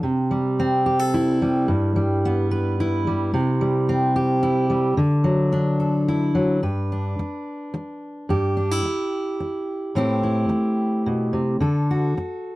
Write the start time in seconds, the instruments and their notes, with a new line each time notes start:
0.03 steel-string acoustic guitar C3
0.31 steel-string acoustic guitar G3
0.60 steel-string acoustic guitar C4
0.86 steel-string acoustic guitar G4
0.99 steel-string acoustic guitar A4
1.14 steel-string acoustic guitar E4
1.42 steel-string acoustic guitar G3
1.68 steel-string acoustic guitar G2
1.96 steel-string acoustic guitar G3
2.25 steel-string acoustic guitar B3
2.51 steel-string acoustic guitar B4
2.80 steel-string acoustic guitar E4
3.07 steel-string acoustic guitar G3
3.34 steel-string acoustic guitar C3
3.61 steel-string acoustic guitar G3
3.89 steel-string acoustic guitar C4
4.16 steel-string acoustic guitar G4
4.43 steel-string acoustic guitar E4
4.70 steel-string acoustic guitar G3
4.97 steel-string acoustic guitar D3
5.24 steel-string acoustic guitar F#3
5.53 steel-string acoustic guitar D4
5.80 steel-string acoustic guitar A4
6.08 steel-string acoustic guitar E4
6.35 steel-string acoustic guitar F#3
6.63 steel-string acoustic guitar G2 B4
6.92 steel-string acoustic guitar D4
7.19 muted steel-string acoustic guitar stroke
7.74 muted steel-string acoustic guitar stroke
8.29 steel-string acoustic guitar G2 G4
8.57 steel-string acoustic guitar D4
8.71 steel-string acoustic guitar E4
8.85 muted steel-string acoustic guitar stroke
9.40 muted steel-string acoustic guitar stroke
9.95 steel-string acoustic guitar A2 A3 C4 E4 G4
10.23 steel-string acoustic guitar E4
10.49 muted steel-string acoustic guitar stroke
11.06 steel-string acoustic guitar B2
11.33 steel-string acoustic guitar C3
11.60 steel-string acoustic guitar D3 A4
11.91 steel-string acoustic guitar F#4
12.17 muted steel-string acoustic guitar stroke